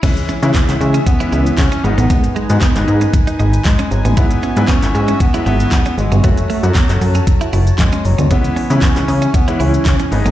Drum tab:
CC |x---------------|----------------|----------------|----------------|
HH |xx-xxx-xxx-xxx-x|xx-xxx-xxx-xxx-x|xx-xxx-xxx-xxx-x|xxoxxxoxxxoxxxox|
SH |xxxxxxxxxxxxxxxx|xxxxxxxxxxxxxxxx|xxxxxxxxxxxxxxxx|xxxxxxxxxxxxxxxx|
CP |----xx------x---|----xx------x---|----xx------x---|----xx------x---|
SD |----o-------o---|----o-------o---|----o-------o---|----o-------o---|
BD |o---o---o---o---|o---o---o---o---|o---o---o---o---|o---o---o---o---|

CC |----------------|
HH |xxoxxxoxxxoxxxox|
SH |xxxxxxxxxxxxxxxx|
CP |----xx------x---|
SD |----o-------o---|
BD |o---o---o---o---|